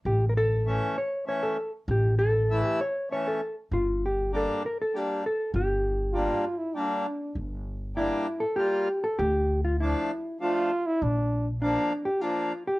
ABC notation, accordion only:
X:1
M:3/4
L:1/8
Q:1/4=98
K:none
V:1 name="Accordion"
z2 [E,A,^C] z [E,A,C] z | z2 [E,A,E] z [E,A,^C] z | z2 [G,_B,D] z [G,B,D] z | z2 [G,_B,D] z [G,B,D] z |
z2 [G,_B,D] z [G,B,F] z | z2 [F,A,D] z [F,A,D] z | z2 [F,_B,D] z [F,B,D] z |]